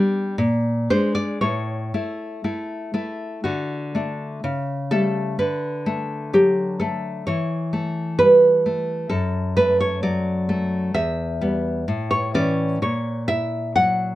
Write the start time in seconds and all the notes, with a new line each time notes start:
Already playing: G3 D4 D5
0.38 A#2
0.90 G#3 D4 C5
1.15 D5
1.41 A2 C#5
1.94 A3 E4
2.44 A3 E4
2.94 A3 E4
3.44 D3 F#4
3.95 A3 D4
4.44 C#3
4.91 G3 A3 A4
5.39 D3 B4
5.86 A3
6.33 F#3 G4
6.80 A3 A4
7.27 E3 C#5
7.73 A3
8.19 G3 B4
8.66 A3
9.10 F#2 A4
9.57 A3 B4
9.81 C#5
10.03 F#3 D5
10.49 A3
10.94 E2 E5
11.41 G3 B3
11.88 A2
12.11 C#5
12.34 E3 C#4 D5
12.82 A#2 C#5
13.28 E4 E5
13.76 F#3 F#5